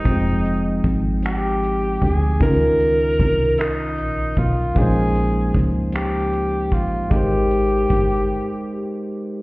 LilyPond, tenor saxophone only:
\new Staff \with { instrumentName = "Tenor saxophone" } { \time 6/8 \key f \minor \tempo 4. = 51 ees'4 r8 g'4 aes'8 | bes'4. ees'4 f'8 | aes'4 r8 g'4 f'8 | g'2~ g'8 r8 | }